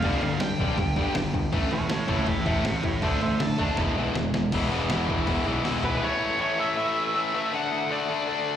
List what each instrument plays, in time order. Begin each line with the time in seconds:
0.02 picked electric bass G1, distorted electric guitar G2 D3 G3, lead electric guitar D5 F5, kick, crash
0.21 picked electric bass D2, distorted electric guitar G2 D3, lead electric guitar D5 F5, crash
0.40 distorted electric guitar G2 D3, picked electric bass G2, lead electric guitar G5, snare, crash
0.59 picked electric bass B1, distorted electric guitar G2 D3 G3, kick, crash
0.77 picked electric bass G2, distorted electric guitar G2 D3, kick, crash
0.96 picked electric bass D2, distorted electric guitar G2 D3 G3, kick, crash
1.15 picked electric bass G1, distorted electric guitar G2 D3, snare, crash
1.34 picked electric bass G1, distorted electric guitar G2 D3, kick, crash
1.52 picked electric bass A1, distorted electric guitar A2 E3 A3, kick, crash
1.71 picked electric bass E1, distorted electric guitar A2 E3, lead electric guitar C#5 A5, crash
1.89 distorted electric guitar A2 E3, picked electric bass A2, lead electric guitar C#5 A5, snare, crash
2.07 picked electric bass C#2, distorted electric guitar A2 E3 A3, lead electric guitar C#5 A5, kick, crash
2.26 picked electric bass A2, distorted electric guitar A2 E3, lead electric guitar E5 G5, kick, crash
2.46 picked electric bass E1, distorted electric guitar A2 E3 A3, lead electric guitar E5 G5, kick, crash
2.64 picked electric bass A1, distorted electric guitar A2 E3, lead electric guitar E5 G5, snare, crash
2.83 picked electric bass A1, distorted electric guitar A2 E3, lead electric guitar C#5 E5, kick, crash
3.02 picked electric bass D2, distorted electric guitar D3 A3 D4, lead electric guitar C5 E5, kick, crash
3.21 picked electric bass A1, distorted electric guitar D3 A3, lead electric guitar C5 E5, crash
3.40 picked electric bass D3, distorted electric guitar D3 A3, lead electric guitar A5, snare, crash
3.58 picked electric bass D#2, distorted electric guitar D3 A3 D4, kick, crash
3.77 picked electric bass E1, distorted electric guitar E2 B2 E3, overdriven electric guitar G#3 B3, kick, snare
3.96 picked electric bass B1, distorted electric guitar E2 B2 E3, overdriven electric guitar G#3 B3
4.15 picked electric bass E1, distorted electric guitar E2 B2, overdriven electric guitar E3 G#3, snare
4.34 picked electric bass E1, distorted electric guitar E2 B2, overdriven electric guitar E3 G#3, snare
4.52 picked electric bass E1, distorted electric guitar E2 B2 E3, overdriven electric guitar G#3 B3 E4, kick, open hi-hat, crash
4.71 picked electric bass E1, distorted electric guitar E2 B2 E3, overdriven electric guitar G#3 B3 E4
4.90 picked electric bass E1, distorted electric guitar E2 B2 E3, overdriven electric guitar G#3 B3 E4, snare, open hi-hat
5.08 distorted electric guitar E2 B2 E3, overdriven electric guitar G#3 B3 E4, kick
5.27 picked electric bass E1, distorted electric guitar E2 B2 E3, overdriven electric guitar G#3 B3 E4, kick, open hi-hat
5.46 picked electric bass B1, distorted electric guitar E2 B2 E3, overdriven electric guitar G#3 B3 E4
5.65 picked electric bass E1, distorted electric guitar E2 B2 E3, overdriven electric guitar G#3 B3 E4, snare, open hi-hat
5.83 picked electric bass B1, distorted electric guitar E2 B2 E3, overdriven electric guitar G#3 B3 E4, lead electric guitar B4, floor tom
6.02 distorted electric guitar A2 E3 A3, lead electric guitar C#5
6.39 distorted electric guitar A2 E3 A3, lead electric guitar C#5
6.59 distorted electric guitar A2 E3 A3, lead electric guitar E5
6.77 distorted electric guitar A2 E3 A3
7.14 distorted electric guitar A2 E3 A3
7.34 distorted electric guitar A2 E3 A3, lead electric guitar E5
7.52 distorted electric guitar D3 A3 D4, lead electric guitar F#5
7.90 distorted electric guitar D3 A3 D4, lead electric guitar D5
8.09 distorted electric guitar D3 A3 D4
8.28 distorted electric guitar D3 A3 D4